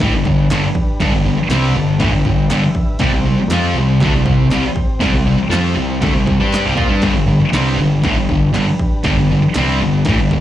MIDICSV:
0, 0, Header, 1, 7, 480
1, 0, Start_track
1, 0, Key_signature, 1, "major"
1, 0, Tempo, 502513
1, 960, Time_signature, 4, 2, 24, 8
1, 9938, End_track
2, 0, Start_track
2, 0, Title_t, "Transistor combo organ"
2, 0, Program_c, 0, 18
2, 0, Note_on_c, 0, 62, 72
2, 0, Note_on_c, 0, 67, 72
2, 0, Note_on_c, 0, 71, 91
2, 1680, Note_on_c, 0, 81, 77
2, 1901, Note_off_c, 0, 81, 0
2, 1936, Note_on_c, 0, 79, 75
2, 2372, Note_off_c, 0, 79, 0
2, 2388, Note_on_c, 0, 79, 84
2, 2502, Note_off_c, 0, 79, 0
2, 2531, Note_on_c, 0, 76, 71
2, 2837, Note_off_c, 0, 62, 0
2, 2846, Note_off_c, 0, 67, 0
2, 2851, Note_off_c, 0, 71, 0
2, 2857, Note_off_c, 0, 76, 0
2, 2859, Note_on_c, 0, 60, 75
2, 2872, Note_on_c, 0, 67, 75
2, 2881, Note_on_c, 0, 72, 83
2, 6669, Note_off_c, 0, 60, 0
2, 6675, Note_off_c, 0, 67, 0
2, 6680, Note_off_c, 0, 72, 0
2, 6699, Note_on_c, 0, 62, 81
2, 6712, Note_on_c, 0, 67, 66
2, 6719, Note_on_c, 0, 71, 88
2, 9938, Note_off_c, 0, 62, 0
2, 9938, Note_off_c, 0, 67, 0
2, 9938, Note_off_c, 0, 71, 0
2, 9938, End_track
3, 0, Start_track
3, 0, Title_t, "Distorted electric guitar"
3, 0, Program_c, 1, 30
3, 6, Note_on_c, 1, 45, 86
3, 20, Note_on_c, 1, 52, 82
3, 118, Note_off_c, 1, 45, 0
3, 125, Note_off_c, 1, 52, 0
3, 143, Note_on_c, 1, 50, 81
3, 146, Note_on_c, 1, 43, 70
3, 236, Note_off_c, 1, 43, 0
3, 241, Note_off_c, 1, 50, 0
3, 247, Note_on_c, 1, 43, 65
3, 252, Note_on_c, 1, 50, 68
3, 437, Note_off_c, 1, 43, 0
3, 439, Note_off_c, 1, 50, 0
3, 491, Note_on_c, 1, 43, 85
3, 505, Note_on_c, 1, 50, 93
3, 599, Note_off_c, 1, 43, 0
3, 606, Note_off_c, 1, 50, 0
3, 958, Note_on_c, 1, 43, 87
3, 976, Note_on_c, 1, 50, 92
3, 1071, Note_off_c, 1, 43, 0
3, 1080, Note_off_c, 1, 50, 0
3, 1083, Note_on_c, 1, 43, 74
3, 1096, Note_on_c, 1, 50, 76
3, 1187, Note_off_c, 1, 43, 0
3, 1187, Note_off_c, 1, 50, 0
3, 1198, Note_on_c, 1, 43, 54
3, 1199, Note_on_c, 1, 50, 61
3, 1302, Note_off_c, 1, 43, 0
3, 1318, Note_off_c, 1, 50, 0
3, 1436, Note_on_c, 1, 48, 84
3, 1440, Note_on_c, 1, 55, 91
3, 1446, Note_on_c, 1, 60, 100
3, 1667, Note_on_c, 1, 43, 57
3, 1669, Note_off_c, 1, 48, 0
3, 1671, Note_off_c, 1, 55, 0
3, 1674, Note_off_c, 1, 60, 0
3, 1675, Note_on_c, 1, 50, 74
3, 1863, Note_off_c, 1, 43, 0
3, 1867, Note_off_c, 1, 50, 0
3, 1900, Note_on_c, 1, 45, 76
3, 1911, Note_on_c, 1, 52, 80
3, 2020, Note_off_c, 1, 45, 0
3, 2024, Note_on_c, 1, 43, 68
3, 2026, Note_off_c, 1, 52, 0
3, 2027, Note_on_c, 1, 50, 75
3, 2146, Note_off_c, 1, 43, 0
3, 2151, Note_off_c, 1, 50, 0
3, 2157, Note_on_c, 1, 43, 70
3, 2161, Note_on_c, 1, 50, 67
3, 2348, Note_off_c, 1, 43, 0
3, 2349, Note_off_c, 1, 50, 0
3, 2386, Note_on_c, 1, 43, 80
3, 2397, Note_on_c, 1, 50, 88
3, 2503, Note_off_c, 1, 43, 0
3, 2508, Note_off_c, 1, 50, 0
3, 2872, Note_on_c, 1, 48, 90
3, 2883, Note_on_c, 1, 55, 92
3, 2985, Note_off_c, 1, 48, 0
3, 2991, Note_off_c, 1, 55, 0
3, 2995, Note_on_c, 1, 48, 75
3, 3002, Note_on_c, 1, 55, 74
3, 3099, Note_off_c, 1, 48, 0
3, 3104, Note_off_c, 1, 55, 0
3, 3111, Note_on_c, 1, 48, 57
3, 3115, Note_on_c, 1, 55, 68
3, 3231, Note_off_c, 1, 48, 0
3, 3234, Note_off_c, 1, 55, 0
3, 3363, Note_on_c, 1, 53, 93
3, 3373, Note_on_c, 1, 60, 97
3, 3378, Note_on_c, 1, 65, 108
3, 3590, Note_off_c, 1, 53, 0
3, 3595, Note_off_c, 1, 60, 0
3, 3597, Note_off_c, 1, 65, 0
3, 3612, Note_on_c, 1, 48, 62
3, 3614, Note_on_c, 1, 55, 75
3, 3793, Note_off_c, 1, 48, 0
3, 3794, Note_off_c, 1, 55, 0
3, 3846, Note_on_c, 1, 50, 78
3, 3853, Note_on_c, 1, 57, 96
3, 3952, Note_off_c, 1, 50, 0
3, 3955, Note_off_c, 1, 57, 0
3, 3961, Note_on_c, 1, 48, 61
3, 3961, Note_on_c, 1, 55, 69
3, 4066, Note_off_c, 1, 48, 0
3, 4066, Note_off_c, 1, 55, 0
3, 4077, Note_on_c, 1, 48, 60
3, 4077, Note_on_c, 1, 55, 61
3, 4266, Note_off_c, 1, 48, 0
3, 4266, Note_off_c, 1, 55, 0
3, 4310, Note_on_c, 1, 48, 84
3, 4317, Note_on_c, 1, 55, 95
3, 4423, Note_off_c, 1, 48, 0
3, 4427, Note_off_c, 1, 55, 0
3, 4774, Note_on_c, 1, 48, 85
3, 4792, Note_on_c, 1, 55, 97
3, 4895, Note_off_c, 1, 48, 0
3, 4904, Note_off_c, 1, 55, 0
3, 4909, Note_on_c, 1, 48, 66
3, 4921, Note_on_c, 1, 55, 72
3, 5020, Note_off_c, 1, 55, 0
3, 5024, Note_off_c, 1, 48, 0
3, 5031, Note_on_c, 1, 55, 61
3, 5036, Note_on_c, 1, 48, 60
3, 5130, Note_off_c, 1, 48, 0
3, 5151, Note_off_c, 1, 55, 0
3, 5249, Note_on_c, 1, 53, 96
3, 5257, Note_on_c, 1, 60, 97
3, 5258, Note_on_c, 1, 65, 105
3, 5490, Note_off_c, 1, 53, 0
3, 5494, Note_on_c, 1, 48, 67
3, 5497, Note_off_c, 1, 60, 0
3, 5498, Note_off_c, 1, 65, 0
3, 5504, Note_on_c, 1, 55, 60
3, 5695, Note_off_c, 1, 48, 0
3, 5700, Note_off_c, 1, 55, 0
3, 5740, Note_on_c, 1, 50, 88
3, 5751, Note_on_c, 1, 57, 87
3, 5859, Note_off_c, 1, 50, 0
3, 5864, Note_off_c, 1, 57, 0
3, 5867, Note_on_c, 1, 48, 71
3, 5877, Note_on_c, 1, 55, 77
3, 5978, Note_off_c, 1, 48, 0
3, 5983, Note_off_c, 1, 55, 0
3, 5989, Note_on_c, 1, 48, 63
3, 5994, Note_on_c, 1, 55, 66
3, 6103, Note_off_c, 1, 55, 0
3, 6111, Note_off_c, 1, 48, 0
3, 6115, Note_on_c, 1, 55, 83
3, 6121, Note_on_c, 1, 62, 78
3, 6127, Note_on_c, 1, 67, 84
3, 6347, Note_off_c, 1, 55, 0
3, 6350, Note_off_c, 1, 62, 0
3, 6353, Note_off_c, 1, 67, 0
3, 6359, Note_on_c, 1, 48, 90
3, 6372, Note_on_c, 1, 55, 97
3, 6453, Note_off_c, 1, 55, 0
3, 6456, Note_on_c, 1, 58, 93
3, 6469, Note_off_c, 1, 48, 0
3, 6469, Note_on_c, 1, 65, 101
3, 6576, Note_off_c, 1, 58, 0
3, 6580, Note_on_c, 1, 55, 91
3, 6584, Note_off_c, 1, 65, 0
3, 6595, Note_on_c, 1, 62, 93
3, 6700, Note_off_c, 1, 55, 0
3, 6707, Note_off_c, 1, 62, 0
3, 6710, Note_on_c, 1, 43, 92
3, 6728, Note_on_c, 1, 50, 81
3, 6825, Note_off_c, 1, 43, 0
3, 6827, Note_off_c, 1, 50, 0
3, 6836, Note_on_c, 1, 43, 66
3, 6839, Note_on_c, 1, 50, 78
3, 6933, Note_off_c, 1, 43, 0
3, 6938, Note_off_c, 1, 50, 0
3, 6945, Note_on_c, 1, 43, 60
3, 6949, Note_on_c, 1, 50, 57
3, 7059, Note_off_c, 1, 43, 0
3, 7072, Note_off_c, 1, 50, 0
3, 7187, Note_on_c, 1, 48, 94
3, 7200, Note_on_c, 1, 55, 95
3, 7213, Note_on_c, 1, 60, 96
3, 7425, Note_off_c, 1, 48, 0
3, 7431, Note_off_c, 1, 55, 0
3, 7438, Note_off_c, 1, 60, 0
3, 7446, Note_on_c, 1, 43, 59
3, 7448, Note_on_c, 1, 50, 65
3, 7634, Note_off_c, 1, 43, 0
3, 7635, Note_off_c, 1, 50, 0
3, 7679, Note_on_c, 1, 45, 91
3, 7689, Note_on_c, 1, 52, 79
3, 7791, Note_off_c, 1, 45, 0
3, 7796, Note_off_c, 1, 52, 0
3, 7797, Note_on_c, 1, 43, 63
3, 7800, Note_on_c, 1, 50, 73
3, 7909, Note_off_c, 1, 50, 0
3, 7913, Note_off_c, 1, 43, 0
3, 7920, Note_on_c, 1, 50, 70
3, 7924, Note_on_c, 1, 43, 59
3, 8112, Note_off_c, 1, 50, 0
3, 8114, Note_off_c, 1, 43, 0
3, 8152, Note_on_c, 1, 43, 84
3, 8156, Note_on_c, 1, 50, 96
3, 8268, Note_off_c, 1, 43, 0
3, 8271, Note_off_c, 1, 50, 0
3, 8636, Note_on_c, 1, 43, 83
3, 8649, Note_on_c, 1, 50, 98
3, 8752, Note_off_c, 1, 43, 0
3, 8758, Note_off_c, 1, 50, 0
3, 8773, Note_on_c, 1, 50, 76
3, 8774, Note_on_c, 1, 43, 69
3, 8885, Note_off_c, 1, 43, 0
3, 8888, Note_off_c, 1, 50, 0
3, 8897, Note_on_c, 1, 43, 63
3, 8900, Note_on_c, 1, 50, 64
3, 8993, Note_off_c, 1, 43, 0
3, 9012, Note_off_c, 1, 50, 0
3, 9143, Note_on_c, 1, 48, 86
3, 9157, Note_on_c, 1, 60, 93
3, 9159, Note_on_c, 1, 55, 81
3, 9367, Note_off_c, 1, 48, 0
3, 9374, Note_off_c, 1, 60, 0
3, 9375, Note_off_c, 1, 55, 0
3, 9382, Note_on_c, 1, 43, 57
3, 9390, Note_on_c, 1, 50, 66
3, 9566, Note_off_c, 1, 43, 0
3, 9570, Note_off_c, 1, 50, 0
3, 9627, Note_on_c, 1, 45, 84
3, 9633, Note_on_c, 1, 52, 99
3, 9730, Note_off_c, 1, 45, 0
3, 9733, Note_off_c, 1, 52, 0
3, 9745, Note_on_c, 1, 43, 63
3, 9747, Note_on_c, 1, 50, 67
3, 9856, Note_off_c, 1, 43, 0
3, 9857, Note_off_c, 1, 50, 0
3, 9868, Note_on_c, 1, 50, 78
3, 9869, Note_on_c, 1, 43, 68
3, 9938, Note_off_c, 1, 43, 0
3, 9938, Note_off_c, 1, 50, 0
3, 9938, End_track
4, 0, Start_track
4, 0, Title_t, "Picked electric bass"
4, 0, Program_c, 2, 34
4, 0, Note_on_c, 2, 33, 97
4, 114, Note_off_c, 2, 33, 0
4, 124, Note_on_c, 2, 31, 80
4, 228, Note_off_c, 2, 31, 0
4, 234, Note_on_c, 2, 31, 89
4, 461, Note_off_c, 2, 31, 0
4, 479, Note_on_c, 2, 31, 99
4, 592, Note_off_c, 2, 31, 0
4, 954, Note_on_c, 2, 31, 79
4, 1065, Note_off_c, 2, 31, 0
4, 1071, Note_on_c, 2, 31, 90
4, 1180, Note_off_c, 2, 31, 0
4, 1186, Note_on_c, 2, 31, 81
4, 1295, Note_off_c, 2, 31, 0
4, 1421, Note_on_c, 2, 36, 91
4, 1651, Note_off_c, 2, 36, 0
4, 1666, Note_on_c, 2, 31, 68
4, 1893, Note_off_c, 2, 31, 0
4, 1904, Note_on_c, 2, 33, 100
4, 2018, Note_off_c, 2, 33, 0
4, 2023, Note_on_c, 2, 31, 81
4, 2140, Note_off_c, 2, 31, 0
4, 2147, Note_on_c, 2, 31, 88
4, 2373, Note_off_c, 2, 31, 0
4, 2378, Note_on_c, 2, 31, 92
4, 2497, Note_off_c, 2, 31, 0
4, 2858, Note_on_c, 2, 36, 82
4, 2970, Note_off_c, 2, 36, 0
4, 2976, Note_on_c, 2, 36, 88
4, 3077, Note_off_c, 2, 36, 0
4, 3083, Note_on_c, 2, 36, 81
4, 3208, Note_off_c, 2, 36, 0
4, 3325, Note_on_c, 2, 41, 85
4, 3560, Note_off_c, 2, 41, 0
4, 3566, Note_on_c, 2, 36, 65
4, 3801, Note_off_c, 2, 36, 0
4, 3824, Note_on_c, 2, 38, 95
4, 3928, Note_off_c, 2, 38, 0
4, 3933, Note_on_c, 2, 36, 76
4, 4053, Note_off_c, 2, 36, 0
4, 4061, Note_on_c, 2, 36, 88
4, 4286, Note_off_c, 2, 36, 0
4, 4292, Note_on_c, 2, 36, 94
4, 4412, Note_off_c, 2, 36, 0
4, 4777, Note_on_c, 2, 36, 81
4, 4891, Note_off_c, 2, 36, 0
4, 4897, Note_on_c, 2, 36, 87
4, 5008, Note_off_c, 2, 36, 0
4, 5013, Note_on_c, 2, 36, 85
4, 5123, Note_off_c, 2, 36, 0
4, 5247, Note_on_c, 2, 41, 97
4, 5481, Note_off_c, 2, 41, 0
4, 5497, Note_on_c, 2, 36, 68
4, 5727, Note_off_c, 2, 36, 0
4, 5749, Note_on_c, 2, 38, 99
4, 5862, Note_off_c, 2, 38, 0
4, 5871, Note_on_c, 2, 36, 79
4, 5979, Note_off_c, 2, 36, 0
4, 5985, Note_on_c, 2, 36, 79
4, 6100, Note_off_c, 2, 36, 0
4, 6108, Note_on_c, 2, 43, 98
4, 6334, Note_off_c, 2, 43, 0
4, 6353, Note_on_c, 2, 36, 95
4, 6461, Note_off_c, 2, 36, 0
4, 6467, Note_on_c, 2, 46, 100
4, 6582, Note_off_c, 2, 46, 0
4, 6587, Note_on_c, 2, 43, 84
4, 6702, Note_off_c, 2, 43, 0
4, 6708, Note_on_c, 2, 31, 81
4, 6819, Note_off_c, 2, 31, 0
4, 6825, Note_on_c, 2, 31, 86
4, 6930, Note_off_c, 2, 31, 0
4, 6936, Note_on_c, 2, 31, 91
4, 7056, Note_off_c, 2, 31, 0
4, 7183, Note_on_c, 2, 36, 91
4, 7412, Note_off_c, 2, 36, 0
4, 7417, Note_on_c, 2, 31, 78
4, 7650, Note_off_c, 2, 31, 0
4, 7674, Note_on_c, 2, 33, 84
4, 7777, Note_off_c, 2, 33, 0
4, 7782, Note_on_c, 2, 31, 67
4, 7901, Note_off_c, 2, 31, 0
4, 7915, Note_on_c, 2, 31, 79
4, 8136, Note_off_c, 2, 31, 0
4, 8142, Note_on_c, 2, 31, 92
4, 8262, Note_off_c, 2, 31, 0
4, 8630, Note_on_c, 2, 31, 81
4, 8747, Note_off_c, 2, 31, 0
4, 8759, Note_on_c, 2, 31, 78
4, 8872, Note_off_c, 2, 31, 0
4, 8887, Note_on_c, 2, 31, 83
4, 8997, Note_off_c, 2, 31, 0
4, 9126, Note_on_c, 2, 36, 92
4, 9349, Note_off_c, 2, 36, 0
4, 9359, Note_on_c, 2, 31, 77
4, 9586, Note_off_c, 2, 31, 0
4, 9602, Note_on_c, 2, 33, 99
4, 9716, Note_off_c, 2, 33, 0
4, 9722, Note_on_c, 2, 31, 80
4, 9836, Note_off_c, 2, 31, 0
4, 9842, Note_on_c, 2, 31, 79
4, 9938, Note_off_c, 2, 31, 0
4, 9938, End_track
5, 0, Start_track
5, 0, Title_t, "Muted distorted electric guitar strokes"
5, 1313, Note_on_c, 9, 29, 59
5, 1409, Note_off_c, 9, 29, 0
5, 3248, Note_on_c, 9, 29, 53
5, 3344, Note_off_c, 9, 29, 0
5, 5142, Note_on_c, 9, 29, 65
5, 5237, Note_off_c, 9, 29, 0
5, 7071, Note_on_c, 9, 29, 57
5, 7166, Note_off_c, 9, 29, 0
5, 9004, Note_on_c, 9, 29, 64
5, 9100, Note_off_c, 9, 29, 0
5, 9938, End_track
6, 0, Start_track
6, 0, Title_t, "Muted picked electric bass strokes"
6, 1301, Note_on_c, 9, 29, 44
6, 1396, Note_off_c, 9, 29, 0
6, 3215, Note_on_c, 9, 29, 39
6, 3310, Note_off_c, 9, 29, 0
6, 5128, Note_on_c, 9, 29, 36
6, 5224, Note_off_c, 9, 29, 0
6, 7073, Note_on_c, 9, 29, 37
6, 7168, Note_off_c, 9, 29, 0
6, 9005, Note_on_c, 9, 29, 42
6, 9101, Note_off_c, 9, 29, 0
6, 9938, End_track
7, 0, Start_track
7, 0, Title_t, "Drums"
7, 0, Note_on_c, 9, 49, 56
7, 4, Note_on_c, 9, 36, 101
7, 10, Note_on_c, 9, 38, 96
7, 95, Note_off_c, 9, 49, 0
7, 99, Note_off_c, 9, 36, 0
7, 106, Note_off_c, 9, 38, 0
7, 240, Note_on_c, 9, 36, 90
7, 336, Note_off_c, 9, 36, 0
7, 479, Note_on_c, 9, 49, 47
7, 487, Note_on_c, 9, 39, 81
7, 490, Note_on_c, 9, 38, 98
7, 575, Note_off_c, 9, 49, 0
7, 582, Note_off_c, 9, 39, 0
7, 585, Note_off_c, 9, 38, 0
7, 717, Note_on_c, 9, 36, 79
7, 812, Note_off_c, 9, 36, 0
7, 957, Note_on_c, 9, 36, 111
7, 962, Note_on_c, 9, 49, 64
7, 972, Note_on_c, 9, 38, 104
7, 1053, Note_off_c, 9, 36, 0
7, 1057, Note_off_c, 9, 49, 0
7, 1068, Note_off_c, 9, 38, 0
7, 1431, Note_on_c, 9, 49, 60
7, 1441, Note_on_c, 9, 38, 113
7, 1442, Note_on_c, 9, 39, 83
7, 1526, Note_off_c, 9, 49, 0
7, 1537, Note_off_c, 9, 38, 0
7, 1538, Note_off_c, 9, 39, 0
7, 1909, Note_on_c, 9, 49, 62
7, 1910, Note_on_c, 9, 36, 115
7, 1920, Note_on_c, 9, 38, 101
7, 2005, Note_off_c, 9, 49, 0
7, 2006, Note_off_c, 9, 36, 0
7, 2015, Note_off_c, 9, 38, 0
7, 2148, Note_on_c, 9, 36, 93
7, 2243, Note_off_c, 9, 36, 0
7, 2386, Note_on_c, 9, 49, 47
7, 2395, Note_on_c, 9, 39, 83
7, 2396, Note_on_c, 9, 38, 97
7, 2481, Note_off_c, 9, 49, 0
7, 2490, Note_off_c, 9, 39, 0
7, 2492, Note_off_c, 9, 38, 0
7, 2625, Note_on_c, 9, 36, 77
7, 2721, Note_off_c, 9, 36, 0
7, 2856, Note_on_c, 9, 49, 61
7, 2862, Note_on_c, 9, 36, 118
7, 2866, Note_on_c, 9, 38, 112
7, 2951, Note_off_c, 9, 49, 0
7, 2957, Note_off_c, 9, 36, 0
7, 2962, Note_off_c, 9, 38, 0
7, 3342, Note_on_c, 9, 49, 59
7, 3351, Note_on_c, 9, 39, 97
7, 3352, Note_on_c, 9, 38, 114
7, 3437, Note_off_c, 9, 49, 0
7, 3447, Note_off_c, 9, 39, 0
7, 3448, Note_off_c, 9, 38, 0
7, 3825, Note_on_c, 9, 36, 100
7, 3832, Note_on_c, 9, 49, 50
7, 3843, Note_on_c, 9, 38, 99
7, 3920, Note_off_c, 9, 36, 0
7, 3928, Note_off_c, 9, 49, 0
7, 3938, Note_off_c, 9, 38, 0
7, 4066, Note_on_c, 9, 36, 91
7, 4161, Note_off_c, 9, 36, 0
7, 4302, Note_on_c, 9, 49, 49
7, 4312, Note_on_c, 9, 38, 101
7, 4318, Note_on_c, 9, 39, 82
7, 4397, Note_off_c, 9, 49, 0
7, 4408, Note_off_c, 9, 38, 0
7, 4413, Note_off_c, 9, 39, 0
7, 4544, Note_on_c, 9, 36, 79
7, 4640, Note_off_c, 9, 36, 0
7, 4785, Note_on_c, 9, 36, 117
7, 4789, Note_on_c, 9, 49, 63
7, 4799, Note_on_c, 9, 38, 105
7, 4880, Note_off_c, 9, 36, 0
7, 4884, Note_off_c, 9, 49, 0
7, 4895, Note_off_c, 9, 38, 0
7, 5266, Note_on_c, 9, 49, 58
7, 5277, Note_on_c, 9, 38, 112
7, 5282, Note_on_c, 9, 39, 94
7, 5362, Note_off_c, 9, 49, 0
7, 5372, Note_off_c, 9, 38, 0
7, 5377, Note_off_c, 9, 39, 0
7, 5749, Note_on_c, 9, 49, 59
7, 5752, Note_on_c, 9, 36, 112
7, 5759, Note_on_c, 9, 38, 104
7, 5844, Note_off_c, 9, 49, 0
7, 5848, Note_off_c, 9, 36, 0
7, 5855, Note_off_c, 9, 38, 0
7, 5991, Note_on_c, 9, 36, 89
7, 6087, Note_off_c, 9, 36, 0
7, 6233, Note_on_c, 9, 49, 56
7, 6243, Note_on_c, 9, 38, 100
7, 6252, Note_on_c, 9, 39, 89
7, 6328, Note_off_c, 9, 49, 0
7, 6339, Note_off_c, 9, 38, 0
7, 6348, Note_off_c, 9, 39, 0
7, 6471, Note_on_c, 9, 36, 91
7, 6567, Note_off_c, 9, 36, 0
7, 6704, Note_on_c, 9, 49, 58
7, 6711, Note_on_c, 9, 36, 102
7, 6714, Note_on_c, 9, 38, 117
7, 6799, Note_off_c, 9, 49, 0
7, 6807, Note_off_c, 9, 36, 0
7, 6810, Note_off_c, 9, 38, 0
7, 7195, Note_on_c, 9, 49, 61
7, 7206, Note_on_c, 9, 38, 102
7, 7207, Note_on_c, 9, 39, 84
7, 7291, Note_off_c, 9, 49, 0
7, 7301, Note_off_c, 9, 38, 0
7, 7302, Note_off_c, 9, 39, 0
7, 7675, Note_on_c, 9, 49, 56
7, 7676, Note_on_c, 9, 36, 115
7, 7685, Note_on_c, 9, 38, 109
7, 7770, Note_off_c, 9, 49, 0
7, 7771, Note_off_c, 9, 36, 0
7, 7781, Note_off_c, 9, 38, 0
7, 7917, Note_on_c, 9, 36, 79
7, 8013, Note_off_c, 9, 36, 0
7, 8157, Note_on_c, 9, 49, 50
7, 8166, Note_on_c, 9, 39, 74
7, 8168, Note_on_c, 9, 38, 92
7, 8253, Note_off_c, 9, 49, 0
7, 8261, Note_off_c, 9, 39, 0
7, 8263, Note_off_c, 9, 38, 0
7, 8400, Note_on_c, 9, 36, 82
7, 8496, Note_off_c, 9, 36, 0
7, 8631, Note_on_c, 9, 49, 59
7, 8638, Note_on_c, 9, 36, 105
7, 8641, Note_on_c, 9, 38, 111
7, 8726, Note_off_c, 9, 49, 0
7, 8733, Note_off_c, 9, 36, 0
7, 8737, Note_off_c, 9, 38, 0
7, 9117, Note_on_c, 9, 49, 60
7, 9120, Note_on_c, 9, 39, 83
7, 9127, Note_on_c, 9, 38, 119
7, 9212, Note_off_c, 9, 49, 0
7, 9216, Note_off_c, 9, 39, 0
7, 9223, Note_off_c, 9, 38, 0
7, 9597, Note_on_c, 9, 49, 57
7, 9604, Note_on_c, 9, 36, 114
7, 9608, Note_on_c, 9, 38, 102
7, 9693, Note_off_c, 9, 49, 0
7, 9700, Note_off_c, 9, 36, 0
7, 9703, Note_off_c, 9, 38, 0
7, 9848, Note_on_c, 9, 36, 88
7, 9938, Note_off_c, 9, 36, 0
7, 9938, End_track
0, 0, End_of_file